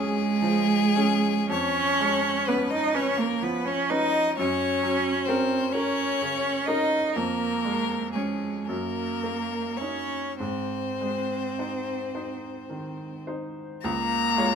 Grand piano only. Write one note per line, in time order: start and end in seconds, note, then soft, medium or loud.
0.00 1.47 F2 medium
0.00 1.53 G#3 medium
0.00 0.96 C#4 medium
0.00 0.97 G#4 medium
0.42 1.29 F3 medium
0.96 1.46 C#4 medium
0.96 1.46 G#4 medium
1.49 4.33 F2 medium
2.00 2.76 G#3 medium
2.48 2.92 C#4 medium
2.48 2.92 B4 medium
2.94 3.39 C#4 medium
2.94 3.39 B4 medium
3.42 4.18 F3 medium
3.90 4.33 C#4 medium
3.90 4.33 B4 medium
4.39 7.13 F#2 medium
4.83 5.56 F#3 medium
5.28 5.70 C#4 medium
5.28 5.71 A#4 medium
5.75 6.17 C#4 medium
5.75 6.18 A#4 medium
6.22 6.97 C#3 medium
6.68 7.12 C#4 medium
6.68 7.12 A#4 medium
7.16 8.64 F2 medium
7.65 8.47 G#3 medium
8.15 8.64 C#4 medium
8.15 8.64 C#5 medium
8.69 10.36 F#2 medium
9.23 10.16 A#3 soft
9.81 10.37 D#4 soft
9.81 10.37 C#5 soft
10.40 13.78 G#2 medium
11.01 11.92 G#3 soft
11.59 12.10 D#4 soft
11.59 12.10 C5 soft
12.15 12.65 D#4 soft
12.15 12.65 C5 soft
12.70 13.61 D#3 soft
13.27 13.79 D#4 soft
13.27 13.79 C5 soft
13.84 14.35 C#2 medium
14.37 14.55 G#3 medium
14.37 14.55 F4 medium
14.37 14.55 C#5 medium